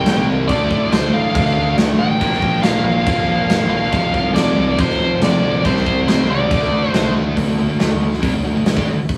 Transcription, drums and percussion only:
0.06 snare loud
0.06 crash medium
0.49 kick loud
0.49 crash medium
0.71 kick medium
0.92 snare loud
0.92 crash medium
1.35 kick loud
1.35 crash medium
1.46 snare soft
1.78 snare loud
1.78 crash medium
2.21 kick loud
2.21 crash medium
2.33 snare soft
2.42 kick medium
2.63 snare loud
2.63 crash medium
3.06 kick loud
3.06 crash medium
3.50 snare loud
3.50 crash medium
3.92 kick loud
3.92 crash medium
4.14 kick medium
4.36 snare loud
4.36 crash medium
4.78 kick loud
4.78 crash medium
4.90 snare soft
5.22 snare loud
5.22 crash medium
5.65 kick loud
5.65 crash medium
5.77 snare soft
5.86 kick medium
6.08 snare loud
6.08 crash medium
6.51 kick loud
6.51 crash medium
6.62 snare soft
6.94 snare loud
6.94 crash medium
7.37 kick medium
7.37 open hi-hat medium
7.80 snare loud
7.80 open hi-hat medium
8.13 snare soft
8.23 kick loud
8.23 open hi-hat medium
8.66 snare loud
8.66 open hi-hat medium
8.77 kick loud
9.09 kick loud
9.09 open hi-hat medium

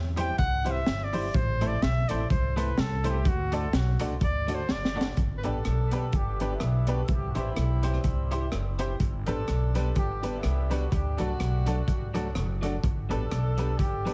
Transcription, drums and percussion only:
0.17 closed hi-hat loud
0.38 kick loud
0.38 closed hi-hat medium
0.66 closed hi-hat medium
0.86 snare loud
0.86 closed hi-hat medium
1.13 open hi-hat medium
1.34 kick loud
1.34 closed hi-hat medium
1.61 closed hi-hat medium
1.82 snare loud
1.82 closed hi-hat medium
2.09 closed hi-hat medium
2.30 kick loud
2.30 closed hi-hat medium
2.58 closed hi-hat medium
2.78 snare loud
2.78 closed hi-hat medium
3.04 closed hi-hat medium
3.25 kick loud
3.25 closed hi-hat medium
3.52 closed hi-hat medium
3.73 snare loud
3.73 closed hi-hat medium
3.99 closed hi-hat medium
4.21 kick loud
4.21 closed hi-hat medium
4.48 closed hi-hat medium
4.69 snare medium
4.85 snare medium
5.01 snare loud
5.17 kick loud
5.17 closed hi-hat medium
5.43 closed hi-hat medium
5.65 cross-stick medium
5.65 closed hi-hat medium
5.91 closed hi-hat medium
6.13 kick loud
6.13 closed hi-hat medium
6.40 closed hi-hat medium
6.60 cross-stick loud
6.60 closed hi-hat medium
6.87 closed hi-hat medium
7.08 kick loud
7.08 closed hi-hat medium
7.35 closed hi-hat medium
7.56 cross-stick loud
7.56 closed hi-hat medium
7.83 closed hi-hat medium
7.94 cross-stick medium
8.04 kick medium
8.04 closed hi-hat medium
8.31 closed hi-hat medium
8.52 cross-stick medium
8.52 closed hi-hat medium
8.79 closed hi-hat medium
9.00 kick loud
9.00 closed hi-hat medium
9.26 closed hi-hat medium
9.48 cross-stick loud
9.48 closed hi-hat medium
9.75 closed hi-hat medium
9.95 kick loud
9.95 closed hi-hat medium
10.23 cross-stick medium
10.23 closed hi-hat medium
10.43 cross-stick loud
10.43 closed hi-hat medium
10.71 closed hi-hat medium
10.92 kick loud
10.92 closed hi-hat medium
11.18 closed hi-hat medium
11.40 cross-stick medium
11.40 closed hi-hat medium
11.66 closed hi-hat medium
11.88 kick loud
11.88 closed hi-hat medium
12.14 cross-stick medium
12.14 closed hi-hat medium
12.35 cross-stick loud
12.35 closed hi-hat medium
12.63 closed hi-hat medium
12.84 kick loud
12.84 closed hi-hat medium
13.11 closed hi-hat medium
13.31 cross-stick loud
13.31 closed hi-hat medium
13.58 closed hi-hat medium
13.79 kick loud
13.79 closed hi-hat medium
14.06 closed hi-hat medium

